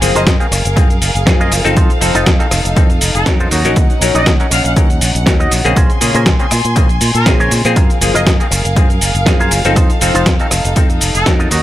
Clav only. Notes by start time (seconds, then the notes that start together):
0.01 F3 A#3 C4 G#4
0.40 F3 A#3 C4 G#4
0.76 F3 A#3 C4 G#4
1.26 F3 A#3 G#4
1.64 F3 C4 D#4 A4
2.01 F3 C4 D#4 A4
2.40 F3 C4 D#4 A4
2.76 F3 C4 D#4 A4
3.26 F#3 C#4 D#4 A#4
3.65 F#3 C#4 D#4 A#4
4.02 F#3 C#4 D#4 A#4
4.40 F#3 C#4 D#4 A#4
4.76 F#3 C#4 D#4 A#4
5.26 F#3 C#4 D#4 A#4
5.65 C#3 A#3 C4 G#4
6.01 C#3 A#3 G#4
6.39 C#3 A#3 C4 G#4
6.76 C#3 A#3 C4 G#4
7.26 C#3 A#3 C4 G#4
7.65 F3 A#3 C4 G#4
8.01 F3 A#3 G#4
8.40 F3 A#3 C4 G#4
8.76 F3 A#3 C4 G#4
9.26 F3 A#3 G#4
9.65 F3 C4 D#4 A4
10.02 F3 C4 D#4 A4
10.40 F3 C4 D#4 A4
10.76 F3 C4 D#4 A4
11.26 F#3 C#4 D#4 A#4